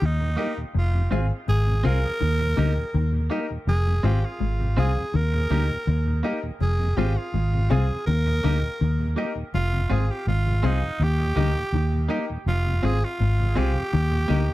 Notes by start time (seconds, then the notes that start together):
0.02 D#2 D#3 D#4
0.21 D#2 A#2
0.37 G3 A#3 D#4 G4 A#4 D#5
0.57 D#2 A#2
0.74 F1 F2 F4
0.94 F2 C3
1.11 G#1 G#2 G#3 C4 F4 G#4 C5 F5
1.48 G#1 G#2 G#4
1.67 F2 C3
1.83 C2 C3 G#3 C4 F4 G#4 A#4 C5 F5
2.03 F2 C3
2.21 D#2 D#3
2.40 D#2 A#2, muted clean electric guitar stroke
2.56 D2 D3 G3 A#3 D#4 G4 A#4 D#5
2.77 D#2 A#2
2.94 D#2 D#3
3.13 D#2 A#2
3.30 G3 A#3 D#4 G4 A#4 D#5
3.50 D#2 A#2
3.67 F1 F2 G#4
3.87 F2 C3
4.03 G#1 G#2 G#3 C4 F4 G4 G#4 C5 F5
4.25 F4
4.40 G#1 G#2
4.60 F2 C3
4.77 C2 C3 G#3 C4 F4 G#4 C5 F5
4.97 F2 C3
5.14 D#2 D#3 A#4
5.33 D#2 A#2, muted clean electric guitar stroke
5.50 D2 D3 G3 A#3 D#4 G4 A#4 D#5
5.70 D#2 A#2
5.87 D#2 D#3
6.06 D#2 A#2
6.23 G3 A#3 D#4 G4 A#4 D#5
6.43 D#2 A#2
6.61 F1 F2 G#4
6.80 F2 C3
6.96 G#1 G#2 G#3 C4 F4 G4 G#4 C5 F5
7.17 F4
7.34 G#1 G#2
7.54 F2 C3
7.69 C2 C3 G#3 C4 F4 G#4 C5 F5
7.90 F2 C3
8.06 D#2 D#3 A#4
8.26 D#2 A#2, muted clean electric guitar stroke
8.43 D2 D3 G3 A#3 D#4 G4 A#4 D#5
8.62 D#2 A#2
8.81 D#2 D#3
8.99 D#2 A#2
9.15 G3 A#3 D#4 G4 A#4 D#5
9.36 D#2 A#2
9.54 F1 F2 F4
9.73 F2 C3
9.89 G#1 G#2 G#3 C4 F4 G#4 C5 F5
10.10 G4
10.27 G#1 G#2 F4
10.46 F2 C3
10.62 C2 C3 G#3 C4 D#4 F4 G#4 C5 F5
10.83 F2 C3
11.00 D#2 D#3 G4
11.19 D#2 A#2, muted clean electric guitar stroke
11.36 D2 D3 G3 A#3 D#4 G4 A#4 D#5
11.57 D#2 A#2
11.73 D#2 D#3
11.94 D#2 A#2
12.08 G3 A#3 D#4 G4 A#4 D#5
12.30 D#2 A#2
12.46 F1 F2 F4
12.67 F2 C3
12.82 G#1 G#2 G#3 C4 F4 G#4 C5 F5
13.04 F4
13.20 G#1 G#2
13.40 F2 C3
13.55 C2 C3 G#3 C4 F4 G4 G#4 C5 F5
13.76 F2 C3
13.93 D#2 D#3
14.11 D#2 A#2, muted clean electric guitar stroke
14.28 D2 D3 G3 A#3 D#4 G4 A#4 D#5
14.48 D#2 A#2